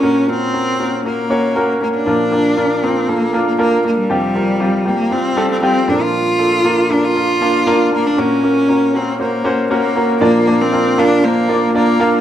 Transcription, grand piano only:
<<
  \new Staff \with { instrumentName = "Grand piano" } { \time 4/4 \key bes \major \tempo 4 = 118 <bes des' ges' bes'>8 <bes des' ges' bes'>8 <bes des' ges' bes'>8 <bes des' ges' bes'>8 <bes des' ges' bes'>8 <bes des' ges' des''>8 <bes des' ges' bes'>8 <bes des' ges' bes'>8 | <bes d' f' bes'>8 <bes d' f' bes'>8 <bes d' f' bes'>8 <bes d' f' bes'>8 <bes d' f' a'>8 <bes d' f' bes'>8 <bes d' f' bes'>8 <bes d' f' bes'>8 | <g c' f' g'>8 <g c' f' bes'>8 <g c' f' g'>8 <g c' f' g'>8 <g c' f' g'>8 <g c' f' a'>8 <g c' f' g'>8 <bes d' f' a' bes'>8~ | <bes d' f' a' bes'>8 <bes d' f' a'>8 <bes d' f' bes'>8 <bes d' f' bes'>8 <bes d' f' bes'>8 <bes d' f' bes'>8 <bes d' f' bes'>8 <bes d' f' bes'>8 |
<bes des' ges' bes'>8 <bes des' ges' bes'>8 <bes des' ges' bes'>8 <bes des' ges' bes'>8 <bes des' ges' c''>8 <bes des' ges' c''>8 <bes des' ges' bes'>8 <bes des' ges' bes'>8 | <bes d' f' bes' d''>8 <bes d' f' bes' d''>8 <bes d' f' bes' d''>8 <bes d' f' bes' f''>8 <bes d' f' bes' c''>8 <bes d' f' bes' d''>8 <bes d' f' bes' d''>8 <bes d' f' bes' f''>8 | }
  \new Staff \with { instrumentName = "Grand piano" } { \clef bass \time 4/4 \key bes \major bes,1 | <bes, f>1 | <f, c>2.~ <f, c>8 <bes, f>8~ | <bes, f>2.~ <bes, f>8 r8 |
bes,1 | <bes, f>1 | }
>>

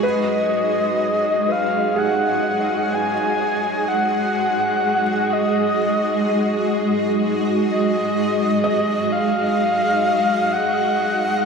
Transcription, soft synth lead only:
\new Staff \with { instrumentName = "Soft synth lead" } { \time 4/4 \key b \lydian \tempo 4 = 63 dis''4. eis''8 fis''4 gis''4 | fis''4. dis''2 r8 | dis''4. eis''4. fis''4 | }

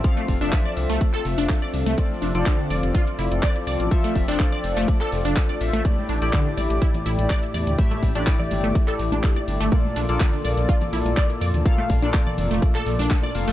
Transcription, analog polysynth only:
\new Staff \with { instrumentName = "Analog polysynth" } { \time 4/4 \key f \major \tempo 4 = 124 <f c' f' a' f''>8. <f c' f' a' e''>2.~ <f c' f' a' e''>16 | <f c' f' a' d''>8. <f c' f' a' d''>2.~ <f c' f' a' d''>16 | <f c' f' a' e''>8. <f c' f' a' d''>2~ <f c' f' a' d''>8. <c' f' a' e''>8 | <a, a e' g' d''>8. <a, a e' g' d''>2.~ <a, a e' g' d''>16 |
<a, a e' g' e''>8. <a, a e' g' d''>2.~ <a, a e' g' d''>16 | <bes, bes f' a' d''>8. <bes, bes f' a' d''>2.~ <bes, bes f' a' d''>16 | <bes, bes f' a' f''>8. <bes, bes f' a' d''>2~ <bes, bes f' a' d''>8. <bes f' a' f''>8 | }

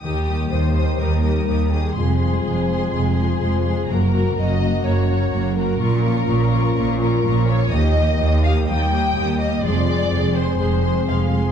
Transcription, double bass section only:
\new Staff \with { instrumentName = "Double bass section" } { \clef bass \time 4/4 \key f \dorian \tempo 4 = 125 ees,4 ees,4 ees,4 ees,4 | f,,4 f,,4 f,,4 f,,4 | ges,,4 ges,,4 ges,,4 ges,,4 | bes,,4 bes,,4 bes,,4 bes,,4 |
ees,4 ees,4 ees,4 ees,4 | f,,4 f,,4 f,,4 f,,4 | }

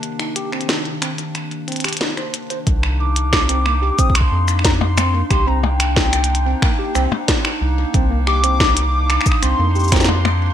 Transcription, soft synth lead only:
\new Staff \with { instrumentName = "Soft synth lead" } { \time 4/4 \key c \minor \tempo 4 = 91 r1 | r8 d'''4. ees'''16 c'''8. bes''16 c'''8. | c'''16 bes''16 g''2. r8 | r8 d'''4. ees'''16 c'''8. bes''16 c'''8. | }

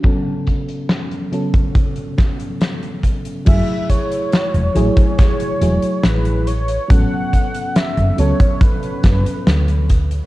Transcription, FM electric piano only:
\new Staff \with { instrumentName = "FM electric piano" } { \time 4/4 \key a \major \tempo 4 = 70 <cis fis b cis' a'>4. <cis fis b cis' a'>2~ <cis fis b cis' a'>8 | <fis a e' gis'>4. <fis a e' gis'>8 r8 <fis a e' gis'>4 r8 | <fis b cis' a'>4. <fis b cis' a'>2 r8 | }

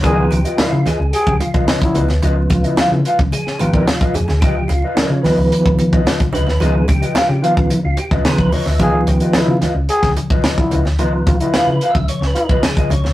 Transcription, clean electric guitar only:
\new Staff \with { instrumentName = "Clean electric guitar" } { \time 4/4 \key des \mixolydian \tempo 4 = 110 <f' ces'' ees''>16 r8 <f' ces'' ees''>16 <f' ces'' ees''>16 r16 <f' ces'' ees''>16 r4 <f' ces'' ees''>16 <f' ces'' ees''>16 r16 <f' ces'' ees''>16 r16 | <f' ces'' ees''>16 r8 <f' ces'' ees''>16 <f' ces'' f''>16 r16 <f' ces'' f''>16 r4 <f' ces'' ees''>16 r16 <f' ces'' ees''>16 r8 | <f' ces'' ees''>16 r8 <f' ces'' ees''>16 <f' ces'' ees''>16 r16 <f' ces'' ees''>16 r4 <f' ces'' ees''>16 <f' ces'' ees''>16 r16 <f' ces'' ees''>16 r16 | <f' ces'' ees''>16 r8 <f' ces'' ees''>16 <f' ces'' f''>16 r16 <f' ces'' f''>16 r4 <f' ces'' ees''>16 r8 <f' ces'' ees''>16 <f' ces'' ees''>16 |
<f' ces'' ees''>16 r8 <f' ces'' ees''>16 <f' ces'' ees''>16 r16 <f' ces'' ees''>16 r4 <f' ces'' ees''>16 <f' ces'' ees''>16 r16 <f' ces'' ees''>16 r16 | <f' ces'' ees''>16 r8 <f' ces'' ees''>16 <f' ces'' f''>16 r16 <f' ces'' f''>16 r4 <f' ces'' ees''>16 r16 <f' ces'' ees''>16 r8 | }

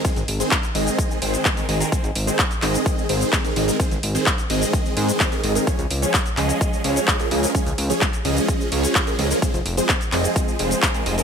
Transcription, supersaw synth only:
\new Staff \with { instrumentName = "Supersaw synth" } { \time 4/4 \key aes \major \tempo 4 = 128 <ees aes c' aes' c''>16 r8 <ees aes c' aes' c''>16 r8 <ees aes c' aes' ees''>4 <ees aes c' aes' c''>8. <ees aes c' aes' bes'>16 <ees aes c' aes' ees''>16 <ees aes c' aes' bes'>16 | r8. <ees aes c' aes' c''>16 r8 <ees aes c' aes' ees''>4 <ees aes c' aes' c''>8. <ees aes c' aes' bes'>16 <ees aes c' aes' ees''>16 <ees aes c' aes' bes'>16 | <ees aes c' aes' c''>16 r8 <ees aes c' aes' c''>16 r8 <ees aes c' aes' ees''>4 <ees aes c' aes' c''>8. <ees aes c' aes' bes'>16 <ees aes c' aes' ees''>16 <ees aes c' aes' bes'>16 | <f des' des''>16 r8 <f aes des' aes' des''>16 r8 <f aes des' aes' ees''>4 <f aes des' aes' des''>8. <f aes des' aes' bes'>16 <f aes des' aes' ees''>16 <f aes des' aes' bes'>16 |
<f aes des' aes' des''>16 r8 <f aes des' aes' des''>16 r8 <f aes des' aes' ees''>4 <f aes des' aes' des''>8. <f aes des' aes' bes'>16 <f aes des' aes' ees''>16 <f aes des' aes' bes'>16 | <f aes aes'>16 r8 <f aes c' aes' c''>16 r8 <f aes c' aes' ees''>4 <f aes c' aes' c''>8. <f aes c' aes' bes'>16 <f aes c' aes' ees''>16 <f aes c' aes' bes'>16 | }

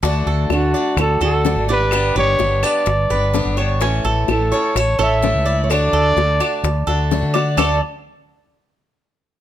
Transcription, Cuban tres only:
\new Staff \with { instrumentName = "Cuban tres" } { \time 4/4 \key d \major \tempo 4 = 127 d'8 a'4 d''4 a'4 d''8~ | d''8 b'4 d'4 b'4 cis''8 | cis'8 a'4 cis''4 a'4 d''8~ | d''8 a'4 d'4 a'4 d''8 |
<d' a' d''>8 r2. r8 | }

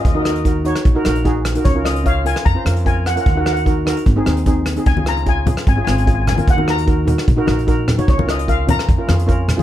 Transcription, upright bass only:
\new Staff \with { instrumentName = "Upright bass" } { \clef bass \time 4/4 \key ees \dorian \tempo 4 = 149 ees,2 bes,,16 r16 bes,,4. | des,2 f,16 r16 f,4. | ees,2 aes,,16 r16 ees,4. | des,2 aes,,16 r16 aes,,4. |
ees,2 bes,,16 r16 bes,,4. | des,2 f,16 r16 f,4. | }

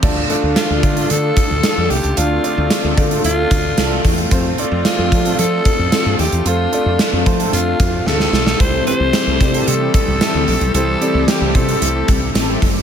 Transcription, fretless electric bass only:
\new Staff \with { instrumentName = "Fretless electric bass" } { \clef bass \time 4/4 \key d \minor \tempo 4 = 112 d,8 r16 d,16 r16 d,16 d8 d8 r16 d,16 r16 f,16 c,16 cis,16 | d,8 r16 d,16 r16 d,16 d8 d,8 d,8 c,8 e,8 | f,8 r16 f,16 r16 f,16 f8 f8 r16 f,16 r16 g,16 ees,16 e,16 | f,8 r16 f,16 r16 f,16 f8 f,8 f,8 d,8 b,,8 |
c,8 r16 c,16 r16 c,16 c8 c8 r16 c,16 r16 d,16 bes,,16 b,,16 | c,8 r16 c,16 r16 c,16 c8 c,8 c,8 a,,8 fis,,8 | }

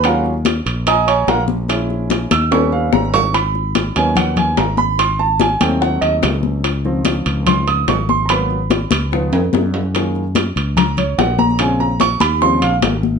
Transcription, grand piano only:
<<
  \new Staff \with { instrumentName = "Grand piano" } { \time 4/4 \key aes \dorian \tempo 4 = 146 <bes' f'' ges'' bes''>8 r4. <ees'' aes'' bes'' ees'''>8 <des'' aes'' bes'' des'''>8 <bes' f'' ges'' bes''>8 r8 | r4. fes'''8 des'''8 f''8 bes''8 des'''8 | ces'''4. aes''8 ges''8 aes''8 bes''8 ces'''8 | c'''8 a''8 aes''8 g''8 ges''8 ees''8 r4 |
r2 c'''8 ees'''8 des'''8 c'''8 | <bes'' ces'''>2. r4 | r2 bes''8 des''8 ges''8 bes''8 | aes''8 bes''8 des'''8 ces'''8 c'''8 f''8 r4 | }
  \new Staff \with { instrumentName = "Grand piano" } { \clef bass \time 4/4 \key aes \dorian <ges aes des' f'>8 r2. r8 | <aes des' fes'>4. r8 <g ces' des'>2 | r4. <ges bes ces' des'>4. r4 | r4. <ges a c'>2~ <ges a c'>8 |
r8 <ees f c'>2.~ <ees f c'>8 | <ges bes ces'>8 r4. <ees f ces'>8 r4. | <ees aes bes>8 r2. r8 | <des aes c'>8 r4. <des f g c'>8 r4. | }
>>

